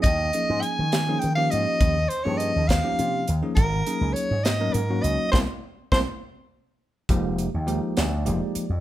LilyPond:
<<
  \new Staff \with { instrumentName = "Soprano saxophone" } { \time 6/8 \key dis \phrygian \tempo 4. = 68 dis''4 gis''4 g''16 eis''16 dis''8~ | dis''8 bis'16 cis''16 dis''8 eis''4 r8 | ais'4 cis''8 dis''8 ais'8 dis''8 | c''8 r8 c''8 r4. |
\key f \dorian r2. | }
  \new Staff \with { instrumentName = "Tine electric piano" } { \time 6/8 \key dis \phrygian << { r2. | r2. | r2. | <bes c' e'>8 r8 <bes c' e'>8 r4. |
\key f \dorian r4. d''4. | } \\ { r8 <eis ais cis' dis' gis'>8. r8 <eis ais cis' dis' gis'>16 r16 <eis ais cis' dis' g'>8.~ | <eis ais cis' dis' g'>16 r8 <eis ais cis' dis' gis'>8. r16 <eis ais cis' dis' g'>8. r16 <eis ais cis' dis' gis'>16 | r8 <fis ais cis' dis' gis'>8. r8 <fis ais cis' dis' ais'>16 r16 <fis ais cis' dis' fis'>8. | r2. |
<f aes bes ees' g'>8. r16 <f aes bes ees' g'>8. r16 <f aes bes ees' g'>8. r16 | } >> }
  \new Staff \with { instrumentName = "Slap bass" } { \clef bass \time 6/8 \key dis \phrygian dis,8 r16 gis,16 r16 dis8. dis8 gis,16 r16 | dis,8 r16 g,8 dis,8 r16 bis,8 dis,16 r16 | gis,,8 r16 cis,16 r16 gis,8. gis,8 cis,16 r16 | c,16 r8. c,16 r4. r16 |
\key f \dorian f,,8. ees,8 r16 d,8 f,,16 r8 f,16 | }
  \new DrumStaff \with { instrumentName = "Drums" } \drummode { \time 6/8 <hh bd>8 hh8 hh8 <hh sn>8 hh8 hh8 | <hh bd>8 hh8 hh8 <hh bd sn>8 hh8 hh8 | <hh bd>8 hh8 hh8 <hh sn>8 hh8 hh8 | <bd sn>4 <bd sn>8 r4. |
<hh bd>8 hh8 hh8 <hh sn>8 hh8 hh8 | }
>>